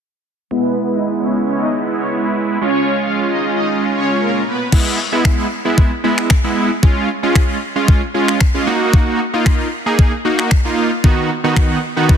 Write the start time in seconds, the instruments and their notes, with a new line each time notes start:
0.51 analog polysynth G#3 B3 E4, supersaw synth B3 B4
0.92 supersaw synth D#4 D#5
1.18 supersaw synth C#4 C#5
1.44 supersaw synth C#4 C#5
1.57 supersaw synth D#4 D#5
1.97 supersaw synth C#4 C#5
2.61 analog polysynth G#3 C#4 F4, supersaw synth C#4 C#5
3.02 supersaw synth F4 F5
3.28 supersaw synth D#4 D#5
3.55 supersaw synth D#4 D#5
3.94 supersaw synth C#4 C#5
4.20 supersaw synth A#3 A#4
4.46 supersaw synth B3 B4
4.72 analog polysynth G#3 B3 E4, kick, crash
5.12 analog polysynth G#3 B3 E4
5.25 finger snap, kick
5.65 analog polysynth G#3 B3 E4
5.78 kick
6.04 analog polysynth G#3 B3 E4
6.18 finger snap
6.30 finger snap, kick
6.44 analog polysynth G#3 B3 E4
6.83 analog polysynth G#3 C#4 F4, kick
7.23 analog polysynth G#3 C#4 F4
7.35 finger snap, kick
7.76 analog polysynth G#3 C#4 F4
7.88 kick
8.14 analog polysynth G#3 C#4 F4
8.28 finger snap
8.41 finger snap, kick
8.54 analog polysynth G#3 C#4 F4
8.67 analog polysynth A#3 D#4 F#4
8.94 kick
9.34 analog polysynth A#3 D#4 F4
9.46 finger snap, kick
9.86 analog polysynth A#3 D#4 G#4
9.99 kick
10.25 analog polysynth A#3 D#4 F#4
10.39 finger snap
10.51 finger snap, kick
10.65 analog polysynth A#3 D#4 F4
11.04 analog polysynth D#3 B3 D#4 F#4, kick
11.44 analog polysynth D#3 B3 D#4 F#4
11.56 finger snap, kick
11.97 analog polysynth D#3 B3 D#4 F#4
12.09 kick